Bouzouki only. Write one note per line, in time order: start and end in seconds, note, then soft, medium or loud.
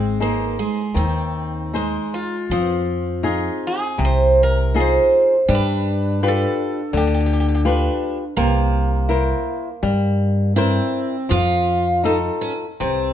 2.14 3.59 F4 medium
3.67 4.00 G#4 medium
4.05 4.41 C5 medium
4.43 4.79 A#4 medium
4.80 5.54 C5 medium
5.55 6.22 B4 medium
6.28 6.93 A4 medium
6.97 7.03 G4 medium
7.07 7.12 G4 medium
7.14 7.19 G4 medium
7.21 7.25 G4 medium
7.26 7.32 G4 medium
7.33 7.39 G4 medium
7.40 7.46 G4 medium
7.49 7.54 G4 medium
7.55 7.60 G4 medium
7.67 8.17 D4 medium